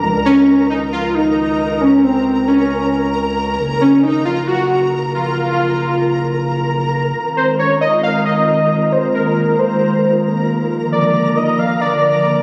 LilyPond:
<<
  \new Staff \with { instrumentName = "Synth texture" } { \time 4/4 \key f \phrygian \tempo 4 = 135 <bes' bes''>1~ | <bes' bes''>1~ | <bes' bes''>1~ | <bes' bes''>1 |
<bes' bes''>1~ | <bes' bes''>1~ | <bes' bes''>1 | }
  \new Staff \with { instrumentName = "Soft synth lead" } { \time 4/4 \key f \phrygian r8 des'4 ees'8 f'8 ees'4. | des'8 c'4 des'4. r4 | r8 des'8 ees'8 f'8 ges'4 r8 f'8~ | f'2. r4 |
r8 c''8 des''8 ees''8 f''8 ees''4. | c''8 bes'4 c''4. r4 | r8 d''4 ees''8 f''8 d''4. | }
  \new Staff \with { instrumentName = "Ambient pad" } { \clef bass \time 4/4 \key f \phrygian << { r1 | r1 | r1 | r1 |
<ees aes f'>1~ | <ees aes f'>1 | <d f>1 | } \\ { r1 | r1 | r1 | r1 |
c'1 | bes1~ | bes1 | } >> }
  \new Staff \with { instrumentName = "Analog synth bass" } { \clef bass \time 4/4 \key f \phrygian des,1~ | des,1 | ges,,1~ | ges,,1 |
r1 | r1 | r1 | }
>>